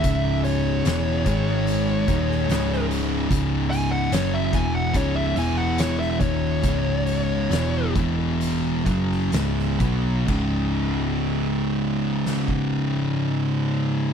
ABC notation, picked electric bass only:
X:1
M:4/4
L:1/8
Q:1/4=70
K:C#m
V:1 name="Picked electric bass" clef=bass
C,,,2 E,,, G,,,2 D,,, C,,,2 | C,,,2 F,,, E,,, C,,, E,,,2 D,,, | C,,,2 E,,, E,,,2 F,,, C,,, B,,, | C,,,8 |]